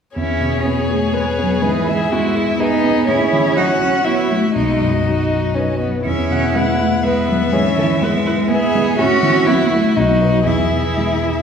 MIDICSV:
0, 0, Header, 1, 6, 480
1, 0, Start_track
1, 0, Key_signature, 4, "major"
1, 0, Tempo, 487013
1, 162, Time_signature, 3, 2, 24, 8
1, 3999, Tempo, 497512
1, 6879, Tempo, 487805
1, 9759, Tempo, 505051
1, 11138, End_track
2, 0, Start_track
2, 0, Title_t, "Violin"
2, 0, Program_c, 0, 40
2, 165, Note_on_c, 0, 73, 42
2, 1596, Note_on_c, 0, 71, 44
2, 1611, Note_off_c, 0, 73, 0
2, 1841, Note_on_c, 0, 76, 44
2, 1856, Note_off_c, 0, 71, 0
2, 2568, Note_on_c, 0, 75, 54
2, 2583, Note_off_c, 0, 76, 0
2, 3020, Note_off_c, 0, 75, 0
2, 3026, Note_on_c, 0, 73, 47
2, 3517, Note_on_c, 0, 78, 56
2, 3532, Note_off_c, 0, 73, 0
2, 3987, Note_on_c, 0, 76, 44
2, 4002, Note_off_c, 0, 78, 0
2, 4475, Note_off_c, 0, 76, 0
2, 4484, Note_on_c, 0, 75, 39
2, 5708, Note_off_c, 0, 75, 0
2, 5930, Note_on_c, 0, 76, 39
2, 6180, Note_on_c, 0, 78, 36
2, 6195, Note_off_c, 0, 76, 0
2, 6388, Note_off_c, 0, 78, 0
2, 6394, Note_on_c, 0, 78, 43
2, 6870, Note_on_c, 0, 76, 49
2, 6885, Note_off_c, 0, 78, 0
2, 8309, Note_off_c, 0, 76, 0
2, 8314, Note_on_c, 0, 76, 59
2, 8787, Note_off_c, 0, 76, 0
2, 8795, Note_on_c, 0, 76, 53
2, 9749, Note_on_c, 0, 75, 50
2, 9764, Note_off_c, 0, 76, 0
2, 10227, Note_on_c, 0, 76, 44
2, 10241, Note_off_c, 0, 75, 0
2, 11138, Note_off_c, 0, 76, 0
2, 11138, End_track
3, 0, Start_track
3, 0, Title_t, "Viola"
3, 0, Program_c, 1, 41
3, 159, Note_on_c, 1, 68, 38
3, 1121, Note_on_c, 1, 71, 44
3, 1135, Note_off_c, 1, 68, 0
3, 1604, Note_off_c, 1, 71, 0
3, 1611, Note_on_c, 1, 68, 42
3, 2088, Note_on_c, 1, 66, 51
3, 2103, Note_off_c, 1, 68, 0
3, 2322, Note_on_c, 1, 64, 54
3, 2337, Note_off_c, 1, 66, 0
3, 2562, Note_on_c, 1, 68, 49
3, 2577, Note_off_c, 1, 64, 0
3, 3032, Note_off_c, 1, 68, 0
3, 3038, Note_on_c, 1, 68, 51
3, 3511, Note_on_c, 1, 66, 50
3, 3526, Note_off_c, 1, 68, 0
3, 4468, Note_off_c, 1, 66, 0
3, 4473, Note_on_c, 1, 66, 39
3, 5702, Note_off_c, 1, 66, 0
3, 5925, Note_on_c, 1, 68, 36
3, 6402, Note_on_c, 1, 71, 39
3, 6416, Note_off_c, 1, 68, 0
3, 6874, Note_off_c, 1, 71, 0
3, 6880, Note_on_c, 1, 71, 48
3, 7349, Note_off_c, 1, 71, 0
3, 7355, Note_on_c, 1, 68, 49
3, 7434, Note_off_c, 1, 68, 0
3, 7605, Note_on_c, 1, 69, 49
3, 7683, Note_off_c, 1, 69, 0
3, 7852, Note_on_c, 1, 71, 52
3, 7931, Note_off_c, 1, 71, 0
3, 8081, Note_on_c, 1, 71, 54
3, 8159, Note_off_c, 1, 71, 0
3, 8318, Note_on_c, 1, 68, 54
3, 8789, Note_off_c, 1, 68, 0
3, 8794, Note_on_c, 1, 66, 57
3, 9715, Note_off_c, 1, 66, 0
3, 9752, Note_on_c, 1, 66, 46
3, 10221, Note_off_c, 1, 66, 0
3, 10226, Note_on_c, 1, 68, 42
3, 11138, Note_off_c, 1, 68, 0
3, 11138, End_track
4, 0, Start_track
4, 0, Title_t, "Violin"
4, 0, Program_c, 2, 40
4, 153, Note_on_c, 2, 64, 48
4, 609, Note_off_c, 2, 64, 0
4, 642, Note_on_c, 2, 68, 52
4, 2088, Note_on_c, 2, 64, 54
4, 2103, Note_off_c, 2, 68, 0
4, 2559, Note_on_c, 2, 63, 61
4, 2573, Note_off_c, 2, 64, 0
4, 3028, Note_off_c, 2, 63, 0
4, 3034, Note_on_c, 2, 61, 65
4, 3979, Note_off_c, 2, 61, 0
4, 3990, Note_on_c, 2, 64, 48
4, 4467, Note_off_c, 2, 64, 0
4, 4477, Note_on_c, 2, 63, 43
4, 4904, Note_off_c, 2, 63, 0
4, 4956, Note_on_c, 2, 63, 47
4, 5434, Note_on_c, 2, 61, 45
4, 5448, Note_off_c, 2, 63, 0
4, 5670, Note_off_c, 2, 61, 0
4, 5676, Note_on_c, 2, 59, 38
4, 5908, Note_off_c, 2, 59, 0
4, 5913, Note_on_c, 2, 64, 55
4, 6834, Note_off_c, 2, 64, 0
4, 6872, Note_on_c, 2, 59, 53
4, 7352, Note_on_c, 2, 61, 66
4, 7366, Note_off_c, 2, 59, 0
4, 7837, Note_on_c, 2, 59, 56
4, 7852, Note_off_c, 2, 61, 0
4, 8295, Note_off_c, 2, 59, 0
4, 8301, Note_on_c, 2, 68, 64
4, 8792, Note_on_c, 2, 66, 75
4, 8807, Note_off_c, 2, 68, 0
4, 9261, Note_on_c, 2, 64, 61
4, 9276, Note_off_c, 2, 66, 0
4, 9752, Note_on_c, 2, 63, 50
4, 9766, Note_off_c, 2, 64, 0
4, 10225, Note_off_c, 2, 63, 0
4, 10230, Note_on_c, 2, 64, 50
4, 11138, Note_off_c, 2, 64, 0
4, 11138, End_track
5, 0, Start_track
5, 0, Title_t, "Cello"
5, 0, Program_c, 3, 42
5, 163, Note_on_c, 3, 61, 65
5, 654, Note_on_c, 3, 59, 54
5, 669, Note_off_c, 3, 61, 0
5, 899, Note_on_c, 3, 57, 56
5, 914, Note_off_c, 3, 59, 0
5, 1130, Note_off_c, 3, 57, 0
5, 1136, Note_on_c, 3, 56, 60
5, 1215, Note_off_c, 3, 56, 0
5, 1377, Note_on_c, 3, 54, 63
5, 1600, Note_off_c, 3, 54, 0
5, 1606, Note_on_c, 3, 52, 64
5, 2075, Note_off_c, 3, 52, 0
5, 2092, Note_on_c, 3, 56, 71
5, 2549, Note_off_c, 3, 56, 0
5, 2555, Note_on_c, 3, 59, 78
5, 3037, Note_on_c, 3, 64, 83
5, 3052, Note_off_c, 3, 59, 0
5, 3510, Note_off_c, 3, 64, 0
5, 3516, Note_on_c, 3, 63, 73
5, 3595, Note_off_c, 3, 63, 0
5, 3757, Note_on_c, 3, 61, 58
5, 3995, Note_off_c, 3, 61, 0
5, 4010, Note_on_c, 3, 59, 63
5, 4243, Note_on_c, 3, 57, 55
5, 4257, Note_off_c, 3, 59, 0
5, 4482, Note_on_c, 3, 56, 64
5, 4496, Note_off_c, 3, 57, 0
5, 4966, Note_on_c, 3, 54, 47
5, 4980, Note_off_c, 3, 56, 0
5, 5688, Note_off_c, 3, 54, 0
5, 5925, Note_on_c, 3, 61, 73
5, 6400, Note_on_c, 3, 59, 62
5, 6414, Note_off_c, 3, 61, 0
5, 6631, Note_off_c, 3, 59, 0
5, 6636, Note_on_c, 3, 57, 64
5, 6714, Note_off_c, 3, 57, 0
5, 6865, Note_on_c, 3, 56, 64
5, 7114, Note_on_c, 3, 54, 56
5, 7128, Note_off_c, 3, 56, 0
5, 7342, Note_off_c, 3, 54, 0
5, 7348, Note_on_c, 3, 52, 65
5, 7831, Note_on_c, 3, 56, 78
5, 7846, Note_off_c, 3, 52, 0
5, 8314, Note_on_c, 3, 59, 84
5, 8329, Note_off_c, 3, 56, 0
5, 8788, Note_off_c, 3, 59, 0
5, 8794, Note_on_c, 3, 61, 88
5, 9271, Note_on_c, 3, 59, 76
5, 9285, Note_off_c, 3, 61, 0
5, 9522, Note_on_c, 3, 57, 67
5, 9536, Note_off_c, 3, 59, 0
5, 9756, Note_on_c, 3, 54, 67
5, 9770, Note_off_c, 3, 57, 0
5, 10225, Note_on_c, 3, 52, 56
5, 10239, Note_off_c, 3, 54, 0
5, 11138, Note_off_c, 3, 52, 0
5, 11138, End_track
6, 0, Start_track
6, 0, Title_t, "Grand piano"
6, 0, Program_c, 4, 0
6, 156, Note_on_c, 4, 40, 38
6, 346, Control_c, 4, 64, 127
6, 398, Note_on_c, 4, 47, 33
6, 639, Note_on_c, 4, 59, 34
6, 790, Note_off_c, 4, 47, 0
6, 880, Note_on_c, 4, 68, 35
6, 1030, Note_off_c, 4, 59, 0
6, 1125, Note_on_c, 4, 71, 40
6, 1270, Note_off_c, 4, 68, 0
6, 1365, Note_on_c, 4, 59, 39
6, 1511, Note_off_c, 4, 71, 0
6, 1567, Note_off_c, 4, 40, 0
6, 1594, Note_on_c, 4, 44, 47
6, 1607, Note_off_c, 4, 59, 0
6, 1628, Control_c, 4, 64, 0
6, 1785, Control_c, 4, 64, 127
6, 1846, Note_on_c, 4, 56, 35
6, 2085, Note_on_c, 4, 59, 45
6, 2227, Note_off_c, 4, 56, 0
6, 2317, Note_on_c, 4, 68, 40
6, 2465, Note_off_c, 4, 59, 0
6, 2557, Note_on_c, 4, 71, 42
6, 2700, Note_off_c, 4, 68, 0
6, 2796, Note_on_c, 4, 59, 37
6, 2940, Note_off_c, 4, 71, 0
6, 2990, Note_off_c, 4, 44, 0
6, 3036, Note_off_c, 4, 59, 0
6, 3038, Note_on_c, 4, 45, 50
6, 3055, Control_c, 4, 64, 0
6, 3237, Control_c, 4, 64, 127
6, 3278, Note_on_c, 4, 52, 37
6, 3519, Note_on_c, 4, 54, 40
6, 3661, Note_off_c, 4, 52, 0
6, 3757, Note_on_c, 4, 66, 38
6, 3903, Note_off_c, 4, 54, 0
6, 3997, Note_on_c, 4, 73, 36
6, 4144, Note_off_c, 4, 66, 0
6, 4240, Note_on_c, 4, 54, 31
6, 4384, Note_off_c, 4, 73, 0
6, 4443, Note_off_c, 4, 45, 0
6, 4476, Note_on_c, 4, 35, 43
6, 4481, Note_off_c, 4, 54, 0
6, 4501, Control_c, 4, 64, 0
6, 4644, Control_c, 4, 64, 127
6, 4721, Note_on_c, 4, 42, 28
6, 4967, Note_on_c, 4, 54, 32
6, 5107, Note_off_c, 4, 42, 0
6, 5204, Note_on_c, 4, 63, 30
6, 5350, Note_off_c, 4, 54, 0
6, 5451, Note_on_c, 4, 71, 33
6, 5590, Note_off_c, 4, 63, 0
6, 5690, Note_on_c, 4, 54, 28
6, 5834, Note_off_c, 4, 71, 0
6, 5886, Note_off_c, 4, 35, 0
6, 5926, Note_on_c, 4, 40, 42
6, 5929, Note_off_c, 4, 54, 0
6, 5947, Control_c, 4, 64, 0
6, 6092, Control_c, 4, 64, 127
6, 6169, Note_on_c, 4, 47, 29
6, 6411, Note_on_c, 4, 56, 36
6, 6548, Note_off_c, 4, 47, 0
6, 6642, Note_on_c, 4, 64, 37
6, 6788, Note_off_c, 4, 56, 0
6, 6881, Note_on_c, 4, 71, 40
6, 7025, Note_off_c, 4, 64, 0
6, 7120, Note_on_c, 4, 56, 36
6, 7266, Note_off_c, 4, 71, 0
6, 7322, Note_off_c, 4, 40, 0
6, 7357, Note_on_c, 4, 44, 46
6, 7362, Note_off_c, 4, 56, 0
6, 7380, Control_c, 4, 64, 0
6, 7545, Control_c, 4, 64, 127
6, 7597, Note_on_c, 4, 52, 40
6, 7842, Note_on_c, 4, 56, 41
6, 7986, Note_off_c, 4, 52, 0
6, 8082, Note_on_c, 4, 64, 47
6, 8228, Note_off_c, 4, 56, 0
6, 8323, Note_on_c, 4, 71, 44
6, 8467, Note_off_c, 4, 64, 0
6, 8561, Note_on_c, 4, 56, 42
6, 8706, Note_off_c, 4, 71, 0
6, 8761, Note_off_c, 4, 44, 0
6, 8791, Note_on_c, 4, 45, 57
6, 8801, Note_off_c, 4, 56, 0
6, 8823, Control_c, 4, 64, 0
6, 8990, Control_c, 4, 64, 127
6, 9027, Note_on_c, 4, 52, 40
6, 9270, Note_on_c, 4, 54, 44
6, 9414, Note_off_c, 4, 52, 0
6, 9510, Note_on_c, 4, 64, 38
6, 9658, Note_off_c, 4, 54, 0
6, 9724, Note_off_c, 4, 45, 0
6, 9752, Note_on_c, 4, 35, 52
6, 9756, Note_off_c, 4, 64, 0
6, 9777, Control_c, 4, 64, 0
6, 9961, Control_c, 4, 64, 127
6, 9985, Note_on_c, 4, 63, 31
6, 9989, Note_on_c, 4, 71, 36
6, 10204, Note_off_c, 4, 63, 0
6, 10207, Note_off_c, 4, 71, 0
6, 10216, Note_off_c, 4, 35, 0
6, 10222, Note_on_c, 4, 40, 42
6, 10254, Control_c, 4, 64, 0
6, 10431, Control_c, 4, 64, 127
6, 10464, Note_on_c, 4, 47, 29
6, 10712, Note_on_c, 4, 56, 32
6, 10855, Note_off_c, 4, 47, 0
6, 10952, Note_on_c, 4, 64, 33
6, 11100, Note_off_c, 4, 56, 0
6, 11138, Note_off_c, 4, 40, 0
6, 11138, Note_off_c, 4, 64, 0
6, 11138, End_track
0, 0, End_of_file